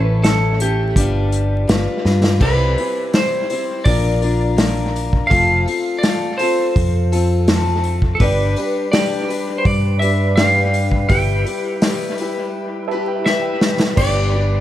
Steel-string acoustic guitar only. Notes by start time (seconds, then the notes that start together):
Already playing: A3 C#4 E4 A4
0.22 A3 C#4 E4 A4
0.61 A3 C#4 E4 A4
0.96 G3 D4 F4 B4
1.67 G3 D4 F4 B4
2.05 D4 F4 B4
2.40 C3 E3 G3 C4 E4
2.79 G3 C4 E4
3.14 G3 C4 E4 C5
3.50 G3 C4 E4 C5
3.85 A#2 F3 A#3 D4 F4 A#4
4.22 A#3 D4 F4 A#4
4.57 A#3 D4 F4 A#4
5.30 F3 A3 C4 F4 A4
5.66 C4 F4 A4
6.03 A3 C4 F4 A4
6.40 C4 F4 A4
7.12 C4 F4 A4
7.47 A3 C4 F4 A4
8.21 G3 D4 G4 B4
8.58 D4 G4 B4
8.93 G3 D4 G4 B4
9.28 D4 G4 B4
10.02 D4 G4 B4
10.37 G3 D4 G4 B4
11.09 G3 E4 G4 B4
11.45 E4 G4 B4
11.82 G3 E4 G4 B4
12.19 E4 G4 B4
12.91 E4 G4 B4
13.26 G3 E4 G4 B4
13.98 G3 D4 G4 B4
14.34 D4 G4 B4